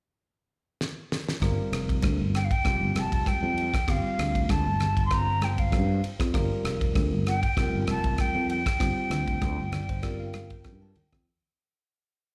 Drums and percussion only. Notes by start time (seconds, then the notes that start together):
0.81 snare
1.12 snare
1.29 snare
1.42 kick, cross-stick, ride, muted conga
1.73 cross-stick, ride
1.89 kick, ride
2.02 kick, cross-stick, ride, high conga
2.35 cross-stick, ride
2.51 kick, ride
2.64 kick, cross-stick, ride, muted conga
2.95 cross-stick, ride, muted conga, high conga
3.12 kick, ride
3.26 kick, cross-stick, ride, high conga
3.57 ride, muted conga
3.74 kick, cross-stick, ride
3.88 kick, cross-stick, ride
4.19 cross-stick, ride
4.35 kick, ride
4.49 kick, cross-stick, ride, high conga
4.80 cross-stick, ride, low conga
4.97 kick, ride
5.11 kick, cross-stick, ride, muted conga
5.41 cross-stick, ride, muted conga, high conga
5.58 kick, ride
5.72 kick, cross-stick, ride, high conga
6.02 ride, muted conga
6.20 kick, cross-stick, ride
6.34 kick, cross-stick, ride
6.65 cross-stick, ride
6.81 kick, ride
6.95 kick, cross-stick, ride, high conga
7.27 cross-stick, ride
7.43 kick, ride
7.57 kick, cross-stick, ride, muted conga
7.87 cross-stick, ride, muted conga, high conga
8.04 kick, ride
8.18 kick, cross-stick, ride, high conga
8.50 ride, muted conga
8.66 kick, cross-stick, ride
8.80 kick, cross-stick, ride
9.11 cross-stick, ride, low conga
9.28 kick, ride
9.42 kick, cross-stick, ride, high conga
9.72 cross-stick, ride, low conga
9.89 kick, ride
10.03 kick, cross-stick, ride, muted conga
10.33 cross-stick, ride, muted conga, high conga
10.50 kick, ride
10.64 kick, cross-stick, ride, high conga
10.82 high conga
10.96 ride, low conga
11.12 kick, cross-stick, ride, low conga